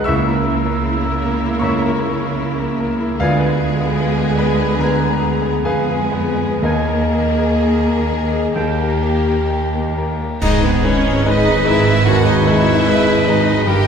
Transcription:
0.04 3.17 C#2 medium
0.04 3.17 C#3 medium
0.04 3.17 A#3 medium
0.04 0.36 A#3 medium
0.04 3.17 E4 medium
0.04 0.36 E4 medium
0.04 3.17 A#4 medium
0.04 1.58 E5 medium
0.04 0.35 E5 medium
0.04 1.58 C#6 medium
0.04 1.58 E6 medium
0.04 1.63 E6 medium
0.08 1.60 C#2 medium
0.27 0.58 A#4 medium
0.46 0.77 E4 medium
0.66 0.97 A#4 medium
0.85 1.16 E4 medium
1.06 1.37 A#3 medium
1.26 1.56 A#4 medium
1.45 1.75 E4 medium
1.59 3.17 C#2 medium
1.59 2.76 C#5 medium
1.59 1.91 E5 medium
1.59 2.76 A#5 medium
1.59 2.75 C#6 medium
1.59 2.80 C#6 medium
1.63 1.91 A#3 medium
1.63 1.92 E4 medium
1.82 2.13 A#4 medium
2.02 2.33 E4 medium
2.19 2.52 A#4 medium
2.40 2.73 E4 medium
2.60 2.93 A#3 medium
2.80 3.13 A#4 medium
3.01 3.21 E4 medium
3.19 4.77 D2 medium
3.19 5.62 D2 medium
3.19 5.62 D3 medium
3.19 5.62 G#3 medium
3.19 5.62 B3 medium
3.19 3.49 B3 medium
3.19 4.37 F4 medium
3.19 5.61 G#4 medium
3.19 5.62 G#4 medium
3.19 5.62 B4 medium
3.19 4.36 D5 medium
3.19 4.36 F5 medium
3.19 3.50 G#5 medium
3.39 3.71 B4 medium
3.60 3.92 G#4 medium
3.81 4.12 B3 medium
4.01 4.32 B4 medium
4.19 4.52 G#4 medium
4.38 4.73 B3 soft
4.38 4.59 B4 medium
4.38 4.80 B5 medium
4.38 4.77 B5 medium
4.61 4.94 B4 medium
4.79 5.13 D3 medium
4.79 5.12 B3 medium
4.79 5.63 A#4 medium
4.79 5.66 A#5 medium
4.79 5.62 A#5 medium
4.83 5.13 G#5 medium
5.00 5.35 B4 medium
5.20 5.56 G#4 medium
5.42 5.79 B3 medium
5.64 6.63 F2 soft
5.64 6.63 F3 medium
5.64 6.61 G#3 medium
5.64 6.61 B3 medium
5.64 5.89 G#4 medium
5.64 6.61 G#4 medium
5.64 6.61 G#4 soft
5.64 6.61 B4 medium
5.64 6.03 B4 medium
5.64 6.59 F5 medium
5.64 6.62 G#5 medium
5.64 6.59 G#5 medium
5.90 6.28 G#4 medium
6.12 6.52 B3 medium
6.36 6.63 B4 soft
6.62 8.52 D#2 medium
6.62 8.53 D#2 medium
6.62 8.53 D#3 medium
6.62 8.55 A#3 medium
6.62 7.03 A#3 soft
6.62 8.55 A#3 medium
6.62 9.94 D#4 soft
6.62 8.53 G#4 medium
6.62 8.52 A#4 medium
6.62 6.86 A#4 soft
6.62 9.93 D#5 medium
6.62 9.94 D#5 medium
6.62 7.04 G#5 medium
6.88 7.29 A#4 medium
7.13 7.53 G#4 soft
7.38 7.77 A#4 soft
7.63 8.01 G#4 soft
7.86 8.24 A#3 soft
8.09 8.47 A#4 soft
8.32 8.56 G#4 medium
8.56 10.38 D#2 medium
8.56 10.18 D#2 medium
8.56 10.18 D#3 medium
8.56 8.92 A#3 medium
8.56 10.18 A#3 medium
8.56 10.05 A#3 soft
8.56 10.21 G4 medium
8.56 10.08 G4 medium
8.56 10.18 A#4 medium
8.56 8.92 G5 medium
8.78 9.17 A#4 medium
9.02 9.40 G4 medium
9.26 9.64 A#4 soft
9.50 9.88 G4 medium
9.75 10.12 A#3 soft
9.98 10.34 A#4 soft
10.22 10.43 G4 soft
10.41 13.63 G#1 medium
10.41 10.83 G#2 medium
10.41 13.63 G#2 medium
10.41 13.64 D#3 medium
10.41 10.62 D#4 medium
10.41 10.62 G#4 medium
10.41 11.22 G#4 medium
10.41 13.64 G#4 medium
10.41 13.87 B4 medium
10.41 10.61 D#5 medium
10.41 concert bass drum medium
10.41 crash medium
10.62 10.83 B3 medium
10.62 10.85 B3 medium
10.62 10.84 D#4 medium
10.62 10.85 B4 medium
10.84 11.22 G#3 medium
10.84 11.26 C#4 medium
10.84 11.21 D#4 medium
10.84 11.25 E4 medium
10.84 11.22 B4 medium
10.84 11.26 C#5 medium
11.25 11.62 G#3 medium
11.25 11.62 D#4 medium
11.25 11.66 D#4 medium
11.25 11.67 D#4 medium
11.25 11.65 G#4 medium
11.25 11.62 B4 medium
11.25 12.10 B4 medium
11.25 11.67 D#5 medium
11.65 12.01 G#3 medium
11.65 12.02 D#4 medium
11.65 12.06 E4 medium
11.65 12.07 E4 medium
11.65 12.05 G#4 medium
11.65 12.02 B4 medium
11.65 12.07 E5 medium
12.05 12.46 D#2 medium
12.05 12.26 F#4 medium
12.05 12.26 F#4 loud
12.05 12.26 A#4 medium
12.05 12.91 C#5 medium
12.05 12.26 F#5 loud
12.25 12.45 D#4 medium
12.25 12.46 D#4 medium
12.25 12.46 F#4 medium
12.25 12.47 D#5 medium
12.46 12.83 G#3 medium
12.46 12.83 D#4 medium
12.46 13.27 E4 medium
12.46 13.28 G#4 medium
12.46 12.83 B4 medium
12.46 13.27 E5 loud
12.87 13.23 G#3 medium
12.87 13.23 D#4 medium
12.87 13.24 B4 medium
12.87 13.68 B4 medium
13.27 13.63 G#3 medium
13.27 13.67 D#4 medium
13.27 13.63 D#4 medium
13.27 13.67 F#4 medium
13.27 13.63 B4 medium
13.27 13.67 D#5 medium
13.65 13.87 G1 medium
13.65 13.87 G2 medium
13.65 13.87 D#3 medium
13.65 13.87 G4 medium
13.65 13.87 G4 loud
13.65 13.87 G4 medium
13.65 13.87 A#4 medium
13.65 13.87 G5 loud

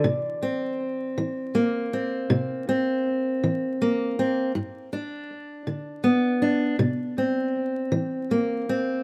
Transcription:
0.00 9.03 D5 loud
0.04 0.72 C3 medium
0.42 1.92 C4 soft
1.18 1.85 E3 medium
1.55 3.80 A#3 soft
1.93 2.67 C4 soft
2.30 2.97 C3 medium
2.69 4.18 C4 medium
3.44 4.10 E3 medium
3.82 4.51 A#3 soft
4.19 4.51 C4 soft
4.55 5.23 G2 medium
4.93 6.41 D4 soft
5.67 6.35 D3 medium
6.04 6.75 B3 soft
6.42 6.75 D4 soft
6.79 7.47 C3 medium
7.18 8.68 C4 soft
7.92 8.61 E3 medium
8.31 9.03 A#3 soft
8.69 9.03 C4 soft

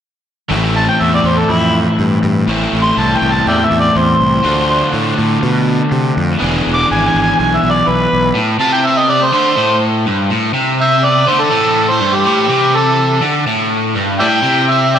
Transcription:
0.49 0.88 A1 medium
0.49 2.46 A2 medium
0.49 2.46 E3 medium
0.49 2.49 A3 medium
0.49 2.49 C4 medium
0.49 2.47 E4 medium
0.76 0.87 A5 medium
0.89 1.03 G5 medium
1.01 1.19 E2 medium
1.01 1.13 E5 medium
1.15 1.28 D5 medium
1.24 1.43 E2 medium
1.24 1.40 C5 medium
1.39 1.52 A4 medium
1.49 1.86 F2 medium
1.49 1.74 E4 medium
1.99 2.17 G2 medium
2.23 2.42 G2 medium
2.47 2.66 A1 medium
2.47 4.43 A2 medium
2.47 4.42 E3 medium
2.47 4.42 A3 medium
2.47 4.44 C4 medium
2.47 4.44 E4 medium
2.73 2.91 A1 medium
2.83 3.01 C6 medium
2.97 3.16 C2 medium
2.97 3.18 A5 medium
3.16 3.34 G5 medium
3.22 3.40 C2 medium
3.32 3.47 A5 medium
3.46 3.65 E2 medium
3.46 3.57 D5 medium
3.46 3.57 E5 medium
3.46 3.67 G5 medium
3.65 3.80 E5 medium
3.71 3.89 E2 medium
3.80 3.99 D5 medium
3.96 4.14 E2 medium
3.96 4.92 C5 medium
4.21 4.39 C2 medium
4.43 4.81 D2 medium
4.43 6.38 D3 medium
4.43 6.39 A3 medium
4.43 6.40 D4 medium
4.43 6.40 F4 medium
4.93 5.12 A2 medium
5.18 5.37 A2 medium
5.43 5.79 B2 medium
5.92 6.10 C3 medium
6.17 6.35 F2 medium
6.39 6.60 E1 medium
6.39 8.34 E3 medium
6.39 8.34 B3 medium
6.39 8.35 D4 medium
6.39 8.36 G#4 medium
6.67 6.85 E1 medium
6.75 6.90 D6 medium
6.91 7.09 G#1 medium
6.91 7.06 G#5 medium
7.07 7.22 G#5 medium
7.14 7.33 G#1 medium
7.22 7.38 G#5 medium
7.39 7.58 B1 medium
7.39 7.58 G#5 medium
7.56 7.73 E5 medium
7.63 7.81 B1 medium
7.71 7.89 D5 medium
7.88 8.06 B1 medium
7.88 8.35 B4 medium
8.13 8.31 B1 medium
8.35 8.59 A2 medium
8.59 9.32 C3 medium
8.59 8.72 F4 medium
8.59 8.72 A5 medium
8.73 8.85 E4 medium
8.73 8.86 G5 medium
8.85 8.99 C4 medium
8.85 8.99 E5 medium
8.98 9.09 B3 medium
8.98 9.12 D#5 medium
9.10 9.20 B3 medium
9.10 9.25 D5 medium
9.20 9.31 A3 medium
9.20 9.33 C5 medium
9.33 9.57 D3 medium
9.33 9.78 A3 medium
9.33 9.81 C5 loud
9.57 10.05 A2 loud
10.06 10.30 G2 medium
10.31 10.53 A2 medium
10.54 11.27 C3 medium
10.81 11.04 C4 medium
10.81 11.06 E5 medium
11.04 11.31 B3 medium
11.04 11.29 D5 medium
11.28 11.50 D3 medium
11.28 11.42 A3 medium
11.28 11.42 C5 medium
11.40 11.91 E3 medium
11.40 11.90 A4 medium
11.51 11.99 A2 loud
11.89 12.15 A3 medium
11.89 12.16 C5 medium
12.00 12.24 G2 medium
12.15 12.75 E3 medium
12.15 12.77 G4 medium
12.25 12.49 A2 medium
12.49 13.21 C3 medium
12.75 13.24 E3 medium
12.75 13.22 A4 medium
13.22 13.46 D3 medium
13.47 13.95 A2 medium
13.95 14.19 G2 medium
14.20 14.43 A2 medium
14.20 14.65 E4 medium
14.20 14.26 D5 medium
14.20 14.26 E5 medium
14.20 14.72 G5 medium
14.43 14.99 C3 medium
14.70 14.94 C4 medium
14.70 14.93 E5 medium
14.95 14.99 E4 medium
14.95 14.99 D5 medium
14.95 14.99 E5 medium
14.95 14.99 G5 medium

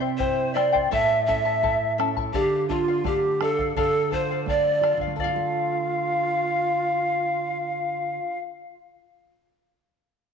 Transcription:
0.00 0.87 C3 medium
0.00 0.19 C4 soft
0.00 0.18 E4 soft
0.00 0.18 C5 soft
0.00 0.19 G5 soft
0.18 0.54 E4 medium
0.18 0.55 E4 soft
0.18 0.56 C5 medium
0.18 0.57 C5 medium
0.18 0.54 C5 medium
0.18 0.53 E5 medium
0.18 0.55 G5 medium
0.18 bombo low medium
0.54 0.90 C4 medium
0.54 0.72 E4 medium
0.54 0.72 C5 medium
0.54 0.90 D5 medium
0.54 0.91 D5 medium
0.54 0.72 E5 medium
0.54 0.71 G5 medium
0.54 bombo rim soft
0.72 0.91 E4 soft
0.72 0.91 C5 soft
0.72 0.91 G5 medium
0.72 bombo low medium
0.91 2.30 A2 medium
0.91 1.27 E4 medium
0.91 1.27 A4 medium
0.91 1.27 C#5 medium
0.91 1.26 E5 medium
0.91 1.25 E5 loud
0.91 0.97 F5 medium
0.91 1.27 A5 medium
0.91 bombo low medium
0.96 1.25 E5 medium
1.26 1.62 C#4 soft
1.26 1.45 E4 medium
1.26 1.45 A4 medium
1.26 1.94 E5 medium
1.26 1.45 E5 medium
1.26 1.95 E5 medium
1.26 1.44 A5 medium
1.26 bombo low medium
1.45 1.62 E4 soft
1.45 1.62 A4 soft
1.45 1.62 A5 soft
1.63 1.97 E4 soft
1.63 1.98 E4 medium
1.63 1.98 A4 medium
1.63 1.97 E5 medium
1.63 1.98 A5 medium
1.63 bombo low medium
1.98 2.33 C#4 soft
1.98 2.16 E4 medium
1.98 2.16 A4 medium
1.98 2.16 E5 medium
1.98 2.15 A5 medium
1.98 bombo rim soft
2.16 2.34 E4 soft
2.16 2.33 A4 soft
2.16 2.34 A5 medium
2.16 bombo low medium
2.34 3.73 D3 medium
2.34 2.67 G4 medium
2.34 2.40 A4 medium
2.34 2.68 A4 medium
2.34 2.70 D5 medium
2.34 2.70 F5 medium
2.34 bombo low medium
2.39 2.67 G4 medium
2.69 3.04 D4 soft
2.69 3.07 F4 medium
2.69 2.87 A4 medium
2.69 2.88 D5 medium
2.69 2.87 F5 medium
2.69 bombo low medium
2.88 3.04 D5 soft
2.88 3.05 F5 medium
3.04 3.39 A3 medium
3.04 3.43 G4 medium
3.04 3.44 G4 medium
3.04 3.40 A4 medium
3.04 3.41 D5 medium
3.04 3.41 F5 medium
3.04 bombo low medium
3.41 3.76 D4 medium
3.41 3.59 A4 medium
3.41 3.77 A4 medium
3.41 3.59 D5 medium
3.41 3.57 F5 medium
3.41 bombo rim medium
3.59 3.76 D5 soft
3.59 3.76 F5 soft
3.59 bombo low medium
3.76 4.96 D3 medium
3.76 4.10 A4 medium
3.76 4.11 D5 medium
3.76 4.11 F5 medium
3.76 bombo low medium
4.11 4.47 F4 soft
4.11 4.29 A4 medium
4.11 4.46 C5 medium
4.11 4.30 D5 medium
4.11 4.30 F5 medium
4.11 bombo low medium
4.31 4.48 D5 soft
4.31 4.48 F5 soft
4.46 4.81 A3 soft
4.46 4.82 A4 medium
4.46 4.97 D5 medium
4.46 4.83 D5 medium
4.46 4.98 D5 medium
4.46 bombo low medium
4.50 4.83 F5 medium
4.81 5.17 F4 soft
4.81 5.01 A4 soft
4.81 5.01 D5 medium
4.81 5.00 F5 medium
4.81 bombo rim soft
4.97 8.18 D3 medium
4.97 bombo low medium
5.01 5.19 D5 soft
5.01 5.19 F5 medium
5.07 8.28 A3 soft
5.16 8.38 D4 soft
5.16 8.39 F4 medium
5.16 8.66 A4 medium
5.16 8.70 D5 medium
5.16 8.40 F5 medium
5.16 bombo low medium
5.24 5.35 F4 soft
5.24 8.74 F5 medium
5.36 8.57 A4 medium

